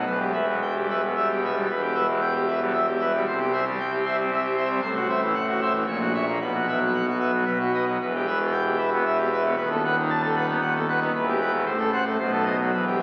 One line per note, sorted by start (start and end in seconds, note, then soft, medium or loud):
0.06 1.65 E1 medium
0.06 1.65 E2 medium
0.06 0.19 B4 medium
0.19 0.32 G4 medium
0.33 0.45 B4 soft
0.33 0.45 E5 soft
0.47 0.59 B2 soft
0.62 0.74 G5 medium
0.75 0.87 G4 soft
0.80 0.96 G3 soft
0.90 1.01 B4 soft
0.90 1.01 E5 soft
1.02 1.14 B2 soft
1.16 1.32 G3 soft
1.16 1.28 E5 soft
1.31 1.50 B2 soft
1.31 1.42 G4 soft
1.44 1.55 B4 soft
1.44 1.55 E5 soft
1.52 1.68 B2 soft
1.52 1.67 G3 soft
1.69 3.23 E1 medium
1.69 3.23 E2 medium
1.69 1.81 B4 medium
1.82 1.94 G4 soft
1.94 2.06 B4 medium
1.94 2.07 E5 medium
2.08 2.20 B2 medium
2.21 2.33 G5 medium
2.34 2.47 G4 medium
2.48 2.59 B4 soft
2.48 2.59 E5 medium
2.60 2.73 B2 medium
2.60 2.73 G3 medium
2.74 2.86 E5 medium
2.86 2.99 G4 medium
3.00 3.12 B4 medium
3.00 3.12 E5 medium
3.13 3.25 B2 medium
3.13 3.25 G3 medium
3.27 4.80 C2 medium
3.27 4.79 C3 medium
3.27 3.39 C5 medium
3.41 3.52 G4 medium
3.52 3.64 C5 medium
3.52 3.64 E5 medium
3.66 3.78 G3 medium
3.79 3.91 G5 medium
3.93 4.04 G4 medium
4.05 4.16 C5 medium
4.05 4.16 E5 medium
4.18 4.30 G3 medium
4.18 4.30 C4 medium
4.31 4.43 E5 medium
4.44 4.56 G4 medium
4.57 4.68 C5 medium
4.57 4.68 E5 medium
4.68 4.80 G3 medium
4.68 4.80 C4 medium
4.81 5.83 A1 medium
4.81 5.83 A2 medium
4.81 4.94 C5 medium
4.95 5.07 F#4 medium
5.09 5.20 C5 medium
5.09 5.20 E5 medium
5.22 5.34 E3 medium
5.34 5.46 F#5 medium
5.49 5.60 F#4 medium
5.61 5.73 C5 medium
5.61 5.73 E5 medium
5.74 5.85 E3 medium
5.87 6.39 A#1 medium
5.87 6.39 A#2 medium
5.87 5.99 C#5 medium
6.00 6.12 F#4 medium
6.14 6.25 C#5 medium
6.14 6.25 E5 medium
6.27 6.38 A#3 medium
6.40 7.43 B1 medium
6.40 7.44 B2 medium
6.40 6.52 B4 medium
6.54 6.66 F#4 medium
6.68 6.79 B4 medium
6.68 6.79 E5 medium
6.80 6.92 F#3 medium
6.93 7.05 F#5 medium
7.06 7.18 F#4 medium
7.20 7.31 B4 soft
7.20 7.31 E5 medium
7.33 7.44 F#3 soft
7.45 7.98 B1 medium
7.45 7.98 B2 medium
7.45 7.58 B4 medium
7.60 7.72 F#4 medium
7.73 7.85 B4 medium
7.73 7.85 D#5 medium
7.87 7.98 F#3 soft
8.01 9.54 E1 medium
8.01 9.54 E2 medium
8.01 8.13 B4 medium
8.14 8.26 G4 medium
8.26 8.38 B4 medium
8.26 8.38 E5 medium
8.40 8.52 B2 medium
8.52 8.64 G5 medium
8.65 8.77 G4 medium
8.78 8.90 B4 soft
8.78 8.90 E5 medium
8.92 9.04 B2 medium
8.92 9.04 B3 soft
9.05 9.17 E5 medium
9.17 9.29 G4 medium
9.32 9.43 B4 medium
9.32 9.43 E5 medium
9.44 9.55 B2 medium
9.44 9.55 B3 medium
9.56 11.09 D#1 medium
9.56 11.09 D#2 medium
9.56 9.69 B4 medium
9.70 9.82 A4 medium
9.85 9.95 B4 medium
9.85 9.95 F#5 medium
9.99 10.10 D#3 medium
10.10 10.21 A5 medium
10.23 10.35 A4 medium
10.36 10.47 B4 medium
10.36 10.47 F#5 medium
10.48 10.60 D#3 medium
10.48 10.60 B3 medium
10.61 10.73 F#5 medium
10.75 10.87 A4 medium
10.88 10.99 B4 medium
10.88 10.99 F#5 medium
11.00 11.11 D#3 medium
11.00 11.12 B3 medium
11.14 11.64 E1 medium
11.14 11.64 E2 medium
11.14 11.26 B4 medium
11.28 11.39 G4 medium
11.40 11.51 B4 medium
11.40 11.51 G5 medium
11.52 11.64 B2 medium
11.65 12.17 A1 medium
11.65 12.17 A2 medium
11.65 11.77 C5 medium
11.79 11.91 A4 medium
11.93 12.04 C5 medium
11.93 12.04 F#5 medium
12.06 12.17 A3 medium
12.19 12.71 B1 medium
12.19 12.71 B2 medium
12.19 12.31 C5 medium
12.32 12.44 A4 medium
12.45 12.57 C5 medium
12.45 12.57 D#5 medium
12.60 12.71 F#3 soft
12.72 13.03 E1 medium
12.72 13.03 E2 medium
12.72 12.85 B4 medium
12.87 12.98 G4 soft
12.99 13.03 B4 soft
12.99 13.03 E5 medium